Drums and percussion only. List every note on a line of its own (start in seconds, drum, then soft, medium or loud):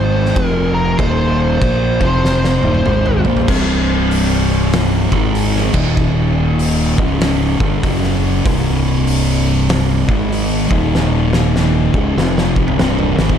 0.26 snare soft
0.36 kick loud
0.36 crash medium
0.99 kick loud
0.99 crash medium
1.62 kick loud
1.62 crash medium
2.01 kick loud
2.25 snare medium
2.44 snare medium
2.63 high tom medium
2.75 high tom medium
2.86 mid tom medium
3.06 mid tom medium
3.25 floor tom medium
3.37 floor tom medium
3.48 kick loud
3.48 crash loud
4.11 open hi-hat medium
4.73 snare loud
4.73 open hi-hat medium
5.12 kick loud
5.35 open hi-hat medium
5.56 snare soft
5.74 kick loud
5.74 crash loud
5.97 kick loud
6.59 open hi-hat medium
6.98 kick loud
7.21 snare loud
7.21 open hi-hat medium
7.60 kick loud
7.83 kick loud
7.83 open hi-hat medium
8.03 snare soft
8.45 kick loud
8.45 open hi-hat medium
9.07 open hi-hat medium
9.69 snare loud
9.69 open hi-hat medium
10.09 kick loud
10.32 open hi-hat medium
10.71 kick loud
10.95 snare medium
11.33 snare medium
11.56 snare medium
11.94 kick medium
12.18 snare medium
12.38 snare medium
12.56 kick medium
12.68 mid tom medium
12.79 snare loud
12.99 floor tom medium
13.19 snare loud
13.29 kick loud